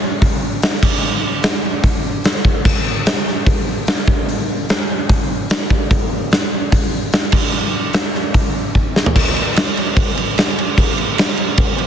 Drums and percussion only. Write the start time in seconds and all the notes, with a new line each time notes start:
0.22 kick, open hi-hat
0.62 snare, open hi-hat
0.74 snare
0.83 kick, crash
1.43 snare, open hi-hat
1.83 kick, open hi-hat
2.24 snare, open hi-hat
2.36 snare
2.45 kick
2.65 kick, crash
3.06 snare, open hi-hat
3.28 snare
3.46 kick, open hi-hat
3.87 snare, open hi-hat
3.99 snare
4.08 kick
4.29 open hi-hat
4.69 snare, open hi-hat
5.09 kick, open hi-hat
5.50 snare, open hi-hat
5.61 snare
5.70 kick
5.91 kick, open hi-hat
6.32 snare, open hi-hat
6.72 kick, open hi-hat
7.12 snare, open hi-hat
7.32 kick, crash
7.93 snare, open hi-hat
8.15 snare
8.34 kick, open hi-hat
8.75 kick
8.96 snare
9.06 floor tom
9.16 kick, crash
9.36 crash
9.56 snare, crash
9.77 crash
9.97 kick, crash
10.17 crash
10.38 snare, crash
10.58 crash
10.78 kick, crash
10.98 crash
11.18 snare, crash
11.37 crash
11.57 kick, crash
11.78 crash